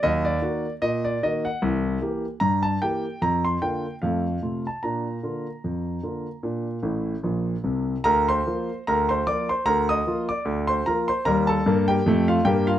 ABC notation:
X:1
M:2/4
L:1/16
Q:"Swing 16ths" 1/4=75
K:Bb
V:1 name="Grand piano"
e d3 e d e _g | z4 b a g2 | b c' g2 f3 a | b8- |
b6 z2 | [Bb] [cc']3 [Bb] [cc'] [dd'] [cc'] | [Bb] [ee']2 [dd']2 [cc'] [Bb] [cc'] | [Bb] [Aa]2 [Gg]2 [Ff] [Gg] [Ff] |]
V:2 name="Grand piano" clef=bass
[E,,_G,]2 [E,B,_G]2 B,,2 [E,B,G]2 | [C,,=E,]2 [E,B,G]2 G,,2 [E,B,G]2 | F,,2 [D,B,F]2 [F,,A,]2 [C,A,F]2 | [B,,D]2 [D,B,F]2 F,,2 [D,B,F]2 |
[B,,D]2 [A,,,A,,]2 [B,,,B,,]2 [C,,C,]2 | D,,2 [F,B,F]2 D,,2 [F,B,F]2 | D,,2 [F,B,F]2 D,,2 [F,B,F]2 | [E,,G,]2 [G,,B,]2 [F,,A,]2 [G,,B,]2 |]